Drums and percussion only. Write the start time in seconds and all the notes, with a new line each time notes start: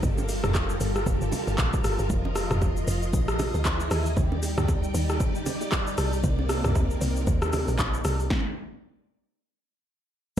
0.03 kick, low conga, shaker
0.18 low bongo, shaker
0.29 open hi-hat, high bongo, shaker
0.44 cross-stick, mid tom, shaker
0.55 kick, clap, high bongo, shaker
0.70 shaker
0.81 open hi-hat, shaker
0.96 cross-stick, shaker
1.06 kick, low conga, shaker
1.21 shaker
1.32 open hi-hat, low bongo, low conga, shaker
1.47 high bongo, shaker
1.58 kick, clap, high bongo, shaker
1.73 kick, shaker
1.84 cross-stick, open hi-hat, shaker
1.99 shaker
2.10 kick, low conga, shaker
2.25 low bongo
2.36 cross-stick, open hi-hat, high bongo, shaker
2.51 cross-stick, mid tom, shaker
2.62 kick, high bongo, shaker
2.77 shaker
2.88 open hi-hat, shaker
3.03 shaker
3.13 kick, low conga, shaker
3.28 cross-stick, shaker
3.39 cross-stick, open hi-hat, low bongo, low conga, shaker
3.54 high bongo, shaker
3.65 kick, clap, high bongo, shaker
3.80 shaker
3.91 cross-stick, open hi-hat, shaker
4.06 shaker
4.17 kick, low conga, shaker
4.32 low bongo
4.43 open hi-hat, high bongo, shaker
4.58 cross-stick, mid tom, shaker
4.68 kick, high bongo, shaker
4.84 shaker
4.95 open hi-hat, shaker
5.10 cross-stick, shaker
5.20 kick, low conga, shaker
5.35 shaker
5.46 open hi-hat, low bongo, low conga, shaker
5.61 high bongo, shaker
5.72 kick, clap, high bongo, shaker
5.87 shaker
5.98 cross-stick, open hi-hat, shaker
6.13 shaker
6.24 kick, low conga, shaker
6.39 low bongo
6.49 cross-stick, open hi-hat, high bongo, shaker
6.64 cross-stick, mid tom, shaker
6.75 kick, high bongo, shaker
6.91 shaker
7.01 open hi-hat, shaker
7.16 shaker
7.27 kick, low conga, shaker
7.42 cross-stick, shaker
7.53 cross-stick, open hi-hat, low bongo, low conga, shaker
7.68 high bongo, shaker
7.79 kick, clap, high bongo, shaker
7.94 shaker
8.05 cross-stick, open hi-hat, shaker
8.20 shaker
8.30 kick, snare